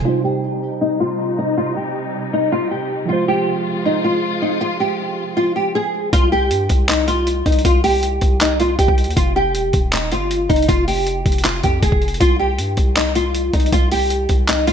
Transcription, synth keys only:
0, 0, Header, 1, 2, 480
1, 0, Start_track
1, 0, Key_signature, -3, "minor"
1, 0, Tempo, 379747
1, 68, Time_signature, 4, 2, 24, 8
1, 18616, End_track
2, 0, Start_track
2, 0, Title_t, "Synth keys"
2, 0, Program_c, 0, 88
2, 0, Control_c, 0, 64, 127
2, 21, Note_on_c, 0, 48, 66
2, 52, Note_on_c, 0, 55, 59
2, 82, Control_c, 0, 64, 0
2, 83, Note_on_c, 0, 63, 63
2, 114, Note_on_c, 0, 72, 72
2, 325, Control_c, 0, 64, 127
2, 3834, Note_off_c, 0, 48, 0
2, 3850, Note_off_c, 0, 55, 0
2, 3861, Note_on_c, 0, 53, 66
2, 3865, Note_off_c, 0, 63, 0
2, 3880, Note_off_c, 0, 72, 0
2, 3892, Note_on_c, 0, 65, 65
2, 3923, Control_c, 0, 64, 0
2, 3923, Note_on_c, 0, 56, 64
2, 3953, Note_on_c, 0, 72, 77
2, 4153, Control_c, 0, 64, 127
2, 7674, Note_off_c, 0, 53, 0
2, 7689, Note_off_c, 0, 65, 0
2, 7705, Note_off_c, 0, 56, 0
2, 7720, Note_off_c, 0, 72, 0
2, 7763, Control_c, 0, 64, 0
2, 18616, End_track
0, 0, End_of_file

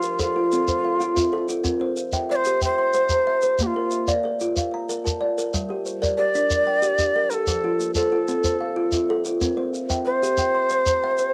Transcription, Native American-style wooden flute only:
0, 0, Header, 1, 2, 480
1, 0, Start_track
1, 0, Tempo, 323276
1, 2454, Time_signature, 12, 3, 24, 8
1, 16830, End_track
2, 0, Start_track
2, 0, Title_t, "Native American-style wooden flute"
2, 0, Program_c, 0, 77
2, 0, Note_on_c, 0, 65, 91
2, 290, Note_off_c, 0, 65, 0
2, 320, Note_on_c, 0, 65, 81
2, 2169, Note_off_c, 0, 65, 0
2, 3433, Note_on_c, 0, 74, 102
2, 3501, Note_on_c, 0, 72, 111
2, 3516, Note_off_c, 0, 74, 0
2, 3872, Note_off_c, 0, 72, 0
2, 3931, Note_on_c, 0, 72, 102
2, 5386, Note_on_c, 0, 67, 75
2, 5408, Note_off_c, 0, 72, 0
2, 5445, Note_on_c, 0, 65, 82
2, 5460, Note_off_c, 0, 67, 0
2, 6082, Note_off_c, 0, 65, 0
2, 9171, Note_on_c, 0, 74, 110
2, 10837, Note_on_c, 0, 70, 88
2, 10859, Note_off_c, 0, 74, 0
2, 10897, Note_on_c, 0, 69, 95
2, 10912, Note_off_c, 0, 70, 0
2, 11788, Note_off_c, 0, 69, 0
2, 11796, Note_on_c, 0, 69, 78
2, 13665, Note_off_c, 0, 69, 0
2, 14932, Note_on_c, 0, 72, 113
2, 16830, Note_off_c, 0, 72, 0
2, 16830, End_track
0, 0, End_of_file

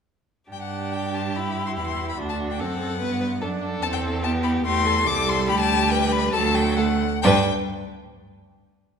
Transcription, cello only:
0, 0, Header, 1, 2, 480
1, 0, Start_track
1, 0, Key_signature, 1, "major"
1, 0, Tempo, 424929
1, 585, Time_signature, 4, 2, 24, 8
1, 1538, Tempo, 411805
1, 5858, Tempo, 431655
1, 10227, End_track
2, 0, Start_track
2, 0, Title_t, "Cello"
2, 0, Program_c, 0, 42
2, 584, Note_on_c, 0, 43, 43
2, 2014, Note_on_c, 0, 40, 37
2, 2031, Note_off_c, 0, 43, 0
2, 2496, Note_off_c, 0, 40, 0
2, 2503, Note_on_c, 0, 38, 43
2, 2981, Note_on_c, 0, 42, 41
2, 2999, Note_off_c, 0, 38, 0
2, 3455, Note_on_c, 0, 43, 48
2, 3472, Note_off_c, 0, 42, 0
2, 3943, Note_on_c, 0, 42, 44
2, 3960, Note_off_c, 0, 43, 0
2, 4408, Note_off_c, 0, 42, 0
2, 4415, Note_on_c, 0, 40, 57
2, 5355, Note_off_c, 0, 40, 0
2, 5363, Note_on_c, 0, 40, 63
2, 5856, Note_on_c, 0, 36, 61
2, 5872, Note_off_c, 0, 40, 0
2, 6324, Note_on_c, 0, 38, 72
2, 6340, Note_off_c, 0, 36, 0
2, 7271, Note_off_c, 0, 38, 0
2, 7277, Note_on_c, 0, 38, 76
2, 8014, Note_off_c, 0, 38, 0
2, 8271, Note_on_c, 0, 43, 84
2, 8536, Note_off_c, 0, 43, 0
2, 10227, End_track
0, 0, End_of_file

